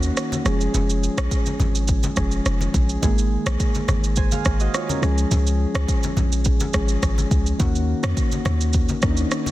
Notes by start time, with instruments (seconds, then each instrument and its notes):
Already playing: 808-style bass D#2, synth keys D#3 A#3 C#4 F#4
0.03 shaker
0.17 cross-stick, shaker
0.32 high conga, shaker
0.44 808-style bass F1, synth keys F3 G#3 C#4 G#4, cross-stick, shaker
0.61 shaker
0.74 808-style bass F1, low conga, shaker
0.90 shaker
1.03 shaker
1.18 808-style bass A#1, cross-stick, shaker
1.31 kick, shaker
1.46 high conga, shaker
1.60 808-style bass G#1, high conga, low conga, shaker
1.75 shaker
1.88 kick, shaker
2.03 high conga, shaker
2.16 808-style bass F1, synth keys F3 G#3 C#4 G#4, kick, cross-stick, shaker
2.31 shaker
2.46 808-style bass F1, cross-stick, shaker
2.61 high conga, shaker
2.74 808-style bass A#1, kick, high conga, shaker
2.89 shaker
3.02 808-style bass G#1, synth keys D#3 G#3 A#3 G#4, kick, low conga, shaker
3.18 shaker
3.46 808-style bass A#1, cross-stick, shaker
3.60 kick, shaker
3.75 high conga, shaker
3.88 808-style bass G#1, cross-stick, high conga, low conga, shaker
4.04 shaker
4.16 synth keys C5 G#5, kick, shaker
4.32 synth keys G#4 F5, high conga, shaker
4.45 808-style bass G#1, kick, cross-stick, shaker
4.60 synth keys F#4 D#5, shaker
4.74 synth keys F4 C#5, cross-stick, shaker
4.89 synth keys C#4 A#4, high conga, shaker
5.01 808-style bass C#2, synth keys F3 G#3 C#4 G#4, cross-stick, shaker
5.18 shaker
5.31 808-style bass C#2, low conga, shaker
5.47 shaker
5.75 808-style bass C#2, cross-stick, shaker
5.88 kick, shaker
6.03 high conga, shaker
6.17 808-style bass A#1, high conga, low conga, shaker
6.32 shaker
6.45 kick, shaker
6.60 high conga, shaker
6.73 808-style bass G#1, synth keys F3 G#3 C#4 G#4, kick, cross-stick, shaker
6.88 shaker
7.03 808-style bass G#1, kick, cross-stick, shaker
7.18 high conga, shaker
7.31 808-style bass C#2, kick, shaker
7.46 shaker
7.58 808-style bass D#2, synth keys D#3 A#3 C#4 F#4, kick, low conga, shaker
7.75 shaker
8.03 808-style bass F2, cross-stick, shaker
8.17 kick, shaker
8.32 high conga, shaker
8.45 808-style bass D#2, cross-stick, high conga, low conga, shaker
8.61 shaker
8.73 kick, shaker
8.89 high conga, shaker
9.01 808-style bass D#2, synth keys D#3 A#3 C#4 D4, kick, cross-stick, shaker
9.10 synth keys D#4
9.17 shaker
9.31 cross-stick, shaker
9.46 high conga, shaker